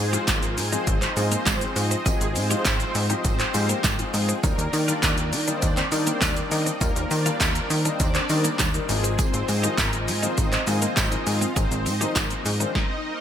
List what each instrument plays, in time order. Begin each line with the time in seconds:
Already playing: analog synth pad F4 C5 D#5 G#5
0.00 analog synth bass G#2, supersaw synth C4 C5
0.13 grand piano F3 G#3 C4 D#4 F4, clean electric guitar G4, closed hi-hat, shaker
0.28 analog synth bass G#1, supersaw synth A#3 A#4, clean electric guitar F4, kick, snare, clap, closed hi-hat, tambourine, shaker
0.43 closed hi-hat, shaker
0.57 analog synth bass G#2, muted clean electric guitar stroke, open hi-hat, tambourine, shaker
0.72 grand piano F3 G#3 C4 D#4 G#4, supersaw synth C4 C5, clean electric guitar D#4, closed hi-hat, shaker
0.87 analog synth bass G#1, supersaw synth D#4 D#5, kick, closed hi-hat, shaker
1.02 clean electric guitar C4, clap, closed hi-hat, shaker
1.17 analog synth bass G#2, grand piano F3 G#3 C4 D#4 F4, muted clean electric guitar stroke, open hi-hat, tambourine, shaker
1.32 clean electric guitar A#3, supersaw synth C4 C5, closed hi-hat, shaker
1.46 analog synth bass G#1, clean electric guitar G#3, supersaw synth C4 C5, kick, snare, clap, closed hi-hat, tambourine, shaker
1.61 grand piano F3 G#3 C4 D#4 G#4, closed hi-hat, shaker
1.76 analog synth bass G#2, supersaw synth D#4 D#5, analog synth pad G5, muted clean electric guitar stroke, open hi-hat, tambourine, shaker
1.91 clean electric guitar C4, closed hi-hat, shaker
2.06 analog synth bass G#1, grand piano F3 G#3 C4 D#4 G4, supersaw synth G#3 G#4, clean electric guitar G#4, kick, closed hi-hat, tambourine, shaker
2.21 analog synth bass G#1, closed hi-hat, shaker
2.36 analog synth bass G#2, supersaw synth C4 C5, muted clean electric guitar stroke, open hi-hat, tambourine, shaker
2.50 grand piano F3 G#3 C4 D#4 F4, clean electric guitar G4, closed hi-hat, shaker
2.65 analog synth bass G#1, supersaw synth C4 C5, clean electric guitar F4, kick, snare, clap, closed hi-hat, tambourine, shaker
2.80 closed hi-hat, shaker
2.95 analog synth bass G#2, muted clean electric guitar stroke, open hi-hat, shaker
3.10 grand piano F3 G#3 C4 D#4 G4, clean electric guitar D#4, supersaw synth D#4 D#5, closed hi-hat, shaker
3.25 analog synth bass G#1, supersaw synth C4 C5, kick, closed hi-hat, tambourine, shaker
3.40 clean electric guitar C4, clap, closed hi-hat, shaker
3.54 analog synth bass G#2, grand piano F3 G#3 C4 D#4 G4, supersaw synth A#3 A#4, muted clean electric guitar stroke, open hi-hat, tambourine, shaker
3.69 clean electric guitar A#3, closed hi-hat, shaker
3.84 analog synth bass G#1, clean electric guitar G#3, kick, snare, clap, closed hi-hat, tambourine, shaker
3.99 grand piano F3 G#3 C4 D#4 F4, closed hi-hat, shaker
4.14 analog synth bass G#2, supersaw synth G#3 G#4, muted clean electric guitar stroke, open hi-hat, tambourine, shaker
4.29 clean electric guitar C4, closed hi-hat, shaker
4.43 analog synth bass D#2, grand piano D#3 G3 A#3 D4 D#4, analog synth pad D#3 A#4 D5, supersaw synth A#3 A#4, clean electric guitar D#4, kick, closed hi-hat, tambourine, shaker
4.58 analog synth bass D#2, closed hi-hat, shaker
4.73 analog synth bass D#3, supersaw synth D4 D5, muted clean electric guitar stroke, open hi-hat, tambourine, shaker
4.88 grand piano D#3 G3 A#3 D4 F4, clean electric guitar F4, closed hi-hat, shaker
5.03 analog synth bass D#2, supersaw synth A#3 A#4, clean electric guitar D#4, kick, snare, clap, closed hi-hat, tambourine, shaker
5.18 closed hi-hat, shaker
5.33 analog synth bass D#3, muted clean electric guitar stroke, open hi-hat, tambourine, shaker
5.47 grand piano D#3 G3 A#3 D4 D#4, supersaw synth C4 C5, clean electric guitar D4, closed hi-hat, shaker
5.62 analog synth bass D#2, supersaw synth D4 D5, kick, closed hi-hat, tambourine, shaker
5.77 clean electric guitar C4, clap, closed hi-hat, shaker
5.92 grand piano D#3 G3 A#3 D4 D#4, analog synth bass D#3, muted clean electric guitar stroke, open hi-hat, tambourine, shaker
6.07 clean electric guitar A#3, supersaw synth C4 C5, closed hi-hat, shaker
6.21 analog synth bass D#2, clean electric guitar G3, supersaw synth D4 D5, kick, snare, clap, closed hi-hat, tambourine, shaker
6.36 grand piano D#3 G3 A#3 D4 D#4, closed hi-hat, shaker
6.51 analog synth bass D#3, supersaw synth D#4 D#5, muted clean electric guitar stroke, open hi-hat, tambourine, shaker
6.66 clean electric guitar C4, closed hi-hat, shaker
6.81 analog synth bass D#2, grand piano D#3 G3 A#3 D4 F4, supersaw synth A#3 A#4, clean electric guitar D#4, analog synth pad C5, kick, closed hi-hat, tambourine, shaker
6.96 analog synth bass D#2, closed hi-hat, shaker
7.11 analog synth bass D#3, supersaw synth D4 D5, muted clean electric guitar stroke, open hi-hat, tambourine, shaker
7.25 grand piano D#3 G3 A#3 D4 F4, clean electric guitar F4, closed hi-hat, shaker
7.40 analog synth bass D#2, supersaw synth A#3 A#4, clean electric guitar D#4, kick, snare, clap, closed hi-hat, tambourine, shaker
7.55 closed hi-hat, shaker
7.70 analog synth bass D#3, muted clean electric guitar stroke, open hi-hat, tambourine, shaker
7.85 grand piano D#3 G3 A#3 D4 D#4, supersaw synth C4 C5, clean electric guitar D4, closed hi-hat, shaker
8.00 analog synth bass D#2, supersaw synth D4 D5, kick, closed hi-hat, tambourine, shaker
8.15 clean electric guitar C4, clap, closed hi-hat, shaker
8.29 grand piano D#3 G3 A#3 D4 D#4, analog synth bass D#3, supersaw synth A#3 A#4, muted clean electric guitar stroke, open hi-hat, tambourine, shaker
8.44 clean electric guitar A#3, closed hi-hat, shaker
8.59 analog synth bass D#2, clean electric guitar G3, kick, snare, clap, closed hi-hat, tambourine, shaker
8.74 grand piano D#3 G3 A#3 D4 D#4, closed hi-hat, shaker
8.89 analog synth bass G#1, grand piano D#3 F3 G#3 C4 D#4, supersaw synth G#3 G#4, analog synth pad F4 D#5 G#5, muted clean electric guitar stroke, open hi-hat, tambourine, shaker
9.04 clean electric guitar C4, closed hi-hat, shaker
9.19 supersaw synth C4 C5, clean electric guitar G#4, kick, closed hi-hat, tambourine, shaker
9.34 analog synth bass G#1, closed hi-hat, shaker
9.48 analog synth bass G#2, supersaw synth D#4 D#5, muted clean electric guitar stroke, open hi-hat, tambourine, shaker
9.63 grand piano D#3 F3 G#3 C4 D#4, clean electric guitar G4, closed hi-hat, shaker
9.78 analog synth bass G#1, supersaw synth A#3 A#4, clean electric guitar F4, kick, snare, clap, closed hi-hat, tambourine, shaker
9.93 closed hi-hat, shaker
10.08 analog synth bass G#2, muted clean electric guitar stroke, open hi-hat, tambourine, shaker
10.23 grand piano D#3 F3 G#3 C4 D#4, supersaw synth C4 C5, clean electric guitar D#4, closed hi-hat, shaker
10.37 analog synth bass G#1, supersaw synth D#4 D#5, kick, closed hi-hat, tambourine, shaker
10.52 clean electric guitar C4, clap, closed hi-hat, shaker
10.67 analog synth bass G#2, grand piano D#3 F3 G#3 C4 F4, muted clean electric guitar stroke, open hi-hat, tambourine, shaker
10.82 clean electric guitar A#3, supersaw synth C4 C5, closed hi-hat, shaker
10.96 analog synth bass G#1, clean electric guitar G#3, supersaw synth D#4 D#5, kick, snare, clap, closed hi-hat, tambourine, shaker
11.12 grand piano D#3 F3 G#3 C4 D#4, closed hi-hat, shaker
11.27 analog synth bass G#2, supersaw synth F4 F5, muted clean electric guitar stroke, open hi-hat, tambourine, shaker
11.41 clean electric guitar C4, closed hi-hat, shaker
11.56 analog synth bass G#1, grand piano D#3 F3 G#3 C4 D#4, supersaw synth C4 C5, clean electric guitar G#4, kick, closed hi-hat, tambourine, shaker
11.71 analog synth bass G#1, closed hi-hat, shaker
11.86 analog synth bass G#2, supersaw synth D#4 D#5, muted clean electric guitar stroke, open hi-hat, tambourine, shaker
12.01 grand piano D#3 F3 G#3 C4 D#4, clean electric guitar G4, closed hi-hat, shaker
12.16 analog synth bass G#1, supersaw synth A#3 A#4, clean electric guitar F4, kick, snare, clap, closed hi-hat, tambourine, shaker
12.31 closed hi-hat, shaker
12.45 analog synth bass G#2, muted clean electric guitar stroke, open hi-hat, tambourine, shaker
12.60 grand piano D#3 F3 G#3 C4 D4, supersaw synth C4 C5, clean electric guitar D#4, closed hi-hat, shaker
12.75 supersaw synth D#4 D#5, kick, snare
13.05 supersaw synth A#3 A#4